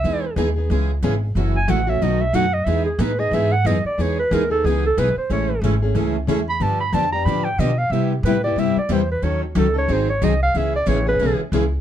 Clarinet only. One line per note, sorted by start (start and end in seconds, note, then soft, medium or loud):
0.00 0.34 E5 medium
1.56 1.71 G#5 medium
1.70 1.91 F#5 medium
1.90 2.04 E5 medium
2.03 2.22 D#5 medium
2.21 2.37 E5 loud
2.35 2.55 F#5 loud
2.54 2.66 D#5 medium
2.65 2.85 E5 medium
2.86 3.02 G#4 medium
3.00 3.21 B4 medium
3.19 3.35 D#5 medium
3.34 3.54 E5 medium
3.52 3.68 F#5 loud
3.66 3.85 D#5 medium
3.86 4.03 D5 medium
4.01 4.19 C#5 medium
4.19 4.36 B4 medium
4.34 4.51 A#4 medium
4.51 4.67 A4 medium
4.66 4.84 G#4 medium
4.86 5.00 A4 medium
4.99 5.17 B4 medium
5.18 5.30 C5 medium
5.33 5.62 C#5 medium
6.50 6.64 B5 loud
6.63 6.80 A5 medium
6.81 6.96 B5 loud
6.94 7.12 A5 loud
7.12 7.27 A#5 loud
7.25 7.46 B5 medium
7.44 7.61 G5 loud
7.60 7.80 D#5 medium
7.78 7.93 F5 medium
7.91 8.11 E5 medium
8.12 8.26 G4 soft
8.25 8.44 B4 loud
8.44 8.61 D5 loud
8.59 8.78 E5 loud
8.78 8.95 D5 medium
8.93 9.11 C5 medium
9.12 9.25 B4 medium
9.24 9.43 C#5 medium
9.44 9.59 F#4 medium
9.58 9.76 A4 medium
9.78 9.94 C#5 loud
9.92 10.09 C5 medium
10.10 10.26 C#5 medium
10.24 10.42 D#5 medium
10.43 10.59 F5 loud
10.57 10.75 E5 medium
10.76 10.90 D5 loud
10.88 11.07 C#5 loud
11.09 11.38 B4 medium